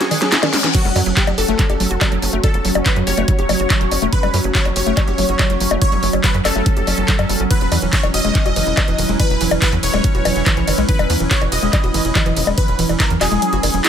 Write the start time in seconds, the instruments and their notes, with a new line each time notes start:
Already playing: synth texture F#3 C#4, ambient pad E4 B4 F#5 F#6, supersaw synth G#4, reverse cymbal
0.01 synth arpeggio sound F#4, snare, closed hi-hat
0.11 synth arpeggio sound D#3, open hi-hat, high bongo
0.22 synth arpeggio sound F#3, snare, closed hi-hat
0.32 synth arpeggio sound E4, snare, clap, closed hi-hat
0.43 synth arpeggio sound D#3, snare, closed hi-hat, high bongo
0.53 synth arpeggio sound G#3, snare, open hi-hat
0.64 synth arpeggio sound E3, snare, closed hi-hat
0.74 synth texture F#3 C#4, synth arpeggio sound F#3, supersaw synth F#4, ambient pad F#4, kick, closed hi-hat, crash
0.85 analog synth bass F#1, synth arpeggio sound G3, closed hi-hat
0.96 analog synth bass F#2, synth arpeggio sound F#3, open hi-hat, high bongo
1.06 analog synth bass F#1, synth arpeggio sound F#3, closed hi-hat
1.17 synth arpeggio sound F#3, supersaw synth G4, kick, clap, closed hi-hat
1.26 analog synth bass F#1, synth arpeggio sound F#3, ambient pad C#5, closed hi-hat, high bongo
1.38 analog synth bass F#1, synth arpeggio sound G4, supersaw synth A4, open hi-hat
1.48 analog synth bass F#1, synth arpeggio sound A3, closed hi-hat
1.59 synth arpeggio sound G3, kick, clap, closed hi-hat
1.70 analog synth bass F#1, synth arpeggio sound G4, closed hi-hat, high bongo
1.80 analog synth bass G1, synth arpeggio sound F#3, open hi-hat
1.91 analog synth bass F#1, synth arpeggio sound F#4, closed hi-hat
2.01 synth arpeggio sound F#3, kick, clap, closed hi-hat, high bongo
2.12 analog synth bass F#1, synth arpeggio sound F#3, closed hi-hat
2.22 analog synth bass F#1, synth arpeggio sound F#3, open hi-hat
2.33 analog synth bass F#1, synth arpeggio sound A3
2.43 synth arpeggio sound F#3, supersaw synth A4, kick, closed hi-hat, high bongo
2.54 analog synth bass F#1, synth arpeggio sound G3, closed hi-hat
2.65 analog synth bass F#1, synth arpeggio sound F#3, open hi-hat
2.75 analog synth bass F#1, synth arpeggio sound F#3, closed hi-hat, high bongo
2.86 synth arpeggio sound F#3, supersaw synth B4, kick, clap, closed hi-hat
2.96 analog synth bass F#2, synth arpeggio sound F#3, closed hi-hat
3.07 analog synth bass F#1, synth arpeggio sound G4, supersaw synth C#5, open hi-hat
3.17 analog synth bass F#1, synth arpeggio sound A3, closed hi-hat, high bongo
3.28 synth arpeggio sound G3, kick, closed hi-hat
3.39 analog synth bass F#1, synth arpeggio sound G4, closed hi-hat
3.49 analog synth bass F#1, synth arpeggio sound F#3, open hi-hat, high bongo
3.60 analog synth bass F#1, synth arpeggio sound F#4, closed hi-hat
3.70 synth arpeggio sound F#3, kick, clap, closed hi-hat
3.81 analog synth bass E1, synth arpeggio sound F#3, closed hi-hat
3.91 analog synth bass G1, synth arpeggio sound F#3, open hi-hat, high bongo
4.02 analog synth bass E1, synth arpeggio sound A3, closed hi-hat
4.12 synth arpeggio sound F#3, supersaw synth B4, kick, closed hi-hat
4.23 analog synth bass F#1, synth arpeggio sound G3, closed hi-hat, high bongo
4.34 analog synth bass F#2, synth arpeggio sound F#3, open hi-hat
4.44 analog synth bass F#1, synth arpeggio sound F#3, closed hi-hat
4.55 synth arpeggio sound F#3, supersaw synth C#5, kick, clap, closed hi-hat
4.65 analog synth bass F#1, synth arpeggio sound F#3, closed hi-hat, high bongo
4.76 analog synth bass F#1, synth arpeggio sound G4, supersaw synth C#5, open hi-hat
4.86 analog synth bass F#1, synth arpeggio sound A3, closed hi-hat
4.97 synth arpeggio sound G3, kick, clap, closed hi-hat, high bongo
5.08 analog synth bass F#1, synth arpeggio sound G4, closed hi-hat
5.18 analog synth bass G1, synth arpeggio sound F#3, open hi-hat
5.29 analog synth bass F#1, synth arpeggio sound F#4, closed hi-hat
5.39 synth arpeggio sound F#3, kick, clap, closed hi-hat, high bongo
5.50 analog synth bass F#1, synth arpeggio sound F#3, closed hi-hat
5.60 analog synth bass F#1, synth arpeggio sound F#3, open hi-hat
5.71 analog synth bass F#1, synth arpeggio sound A3, closed hi-hat, high bongo
5.82 synth arpeggio sound F#3, supersaw synth C#5, kick, closed hi-hat
5.92 analog synth bass F#1, synth arpeggio sound G3, closed hi-hat
6.03 analog synth bass F#1, synth arpeggio sound F#3, open hi-hat
6.13 analog synth bass F#1, synth arpeggio sound F#3, closed hi-hat, high bongo
6.24 synth arpeggio sound F#3, supersaw synth B4, kick, clap, closed hi-hat
6.34 analog synth bass F#2, synth arpeggio sound F#3, closed hi-hat
6.45 analog synth bass F#1, synth arpeggio sound G4, supersaw synth A4, clap, open hi-hat, high bongo
6.55 analog synth bass F#1, synth arpeggio sound A3, closed hi-hat
6.66 synth arpeggio sound G3, kick, closed hi-hat
6.77 analog synth bass F#1, synth arpeggio sound G4, closed hi-hat
6.87 analog synth bass F#1, synth arpeggio sound F#3, open hi-hat, high bongo
6.98 analog synth bass F#1, synth arpeggio sound F#3, closed hi-hat
7.08 synth arpeggio sound F#3, kick, clap, closed hi-hat
7.19 analog synth bass F#2, synth arpeggio sound F#3, closed hi-hat, high bongo
7.29 analog synth bass F#1, synth arpeggio sound G3, open hi-hat
7.40 analog synth bass G1, synth arpeggio sound C#4, closed hi-hat
7.51 synth arpeggio sound E3, ambient pad E4, supersaw synth B4, kick, closed hi-hat, ride
7.60 analog synth bass E1, synth arpeggio sound F#3, ambient pad B4, closed hi-hat
7.72 analog synth bass E2, synth arpeggio sound E3, open hi-hat, ride, high bongo
7.82 analog synth bass E1, synth arpeggio sound E3, closed hi-hat
7.93 synth arpeggio sound E3, supersaw synth C#5, kick, clap, closed hi-hat, ride
8.03 analog synth bass E1, synth arpeggio sound E3, closed hi-hat, high bongo
8.14 analog synth bass E1, synth arpeggio sound F#4, supersaw synth D#5, open hi-hat, ride
8.24 analog synth bass E1, synth arpeggio sound G#3, ambient pad F#5, closed hi-hat
8.35 synth arpeggio sound F#3, ambient pad B5, kick, clap, closed hi-hat, ride
8.46 analog synth bass E1, synth arpeggio sound F#4, closed hi-hat, high bongo
8.56 analog synth bass F#1, synth arpeggio sound E3, open hi-hat, ride
8.67 analog synth bass E1, synth arpeggio sound E4, closed hi-hat
8.77 synth arpeggio sound E3, kick, clap, closed hi-hat, ride, high bongo
8.88 analog synth bass E1, synth arpeggio sound E3, closed hi-hat
8.98 analog synth bass E1, synth arpeggio sound D#3, open hi-hat, ride
9.09 analog synth bass E1, synth arpeggio sound G#3, closed hi-hat
9.20 synth arpeggio sound E3, supersaw synth B4, kick, closed hi-hat, ride, high bongo
9.30 analog synth bass E1, synth arpeggio sound F#3, closed hi-hat
9.41 analog synth bass E1, synth arpeggio sound E3, open hi-hat, ride
9.51 analog synth bass E1, synth arpeggio sound E3, closed hi-hat, high bongo
9.62 synth arpeggio sound E3, supersaw synth B4, kick, clap, closed hi-hat, ride
9.72 analog synth bass E2, synth arpeggio sound E3, closed hi-hat
9.83 analog synth bass E1, synth arpeggio sound F#4, supersaw synth C#5, open hi-hat, ride
9.94 analog synth bass E1, synth arpeggio sound G#3, closed hi-hat, high bongo
10.04 synth arpeggio sound F#3, kick, closed hi-hat, ride
10.15 analog synth bass E1, synth arpeggio sound F#4, closed hi-hat
10.25 analog synth bass E1, synth arpeggio sound E3, open hi-hat, ride, high bongo
10.36 analog synth bass E1, synth arpeggio sound E4, closed hi-hat
10.46 synth arpeggio sound E3, kick, clap, closed hi-hat, ride
10.57 analog synth bass B1, synth arpeggio sound E3, closed hi-hat
10.67 analog synth bass F#1, synth arpeggio sound D#3, open hi-hat, ride, high bongo
10.78 analog synth bass B1, synth arpeggio sound G#3, closed hi-hat
10.89 synth arpeggio sound E3, supersaw synth B4, kick, closed hi-hat, ride
10.99 analog synth bass E1, synth arpeggio sound F#3, closed hi-hat, high bongo
11.10 analog synth bass E2, synth arpeggio sound E3, open hi-hat, ride
11.20 analog synth bass E1, synth arpeggio sound E3, closed hi-hat
11.31 synth arpeggio sound E3, supersaw synth C#5, kick, clap, closed hi-hat, ride
11.41 analog synth bass E1, synth arpeggio sound E3, closed hi-hat, high bongo
11.52 analog synth bass E1, synth arpeggio sound F#4, supersaw synth D#5, open hi-hat, ride
11.63 analog synth bass E1, synth arpeggio sound G#3, closed hi-hat
11.73 synth arpeggio sound F#3, kick, clap, closed hi-hat, ride, high bongo
11.84 analog synth bass E1, synth arpeggio sound F#4, closed hi-hat
11.94 analog synth bass F#1, synth arpeggio sound E3, open hi-hat, ride
12.05 analog synth bass E1, synth arpeggio sound E4, closed hi-hat
12.15 synth arpeggio sound E3, kick, clap, closed hi-hat, ride, high bongo
12.26 analog synth bass E1, synth arpeggio sound E3, closed hi-hat
12.36 analog synth bass E1, synth arpeggio sound D#3, open hi-hat, ride
12.47 analog synth bass E1, synth arpeggio sound G#3, closed hi-hat, high bongo
12.58 synth arpeggio sound E3, supersaw synth B4, kick, closed hi-hat, ride
12.68 analog synth bass E1, synth arpeggio sound F#3, closed hi-hat
12.79 analog synth bass E1, synth arpeggio sound E3, open hi-hat, ride
12.89 analog synth bass E1, synth arpeggio sound E3, closed hi-hat, high bongo
13.00 synth arpeggio sound E3, supersaw synth A#4, kick, clap, closed hi-hat, ride
13.10 analog synth bass E2, synth arpeggio sound E3, closed hi-hat
13.21 analog synth bass E1, synth arpeggio sound F#4, supersaw synth G#4, clap, open hi-hat, ride, high bongo
13.32 analog synth bass E1, synth arpeggio sound G#3, closed hi-hat
13.42 synth arpeggio sound F#3, closed hi-hat, ride
13.53 analog synth bass F#1, synth arpeggio sound F#4, closed hi-hat
13.63 analog synth bass F#1, synth arpeggio sound D#3, open hi-hat, ride, high bongo
13.74 analog synth bass E1, synth arpeggio sound F#3, closed hi-hat
13.84 synth arpeggio sound E4, clap, closed hi-hat, ride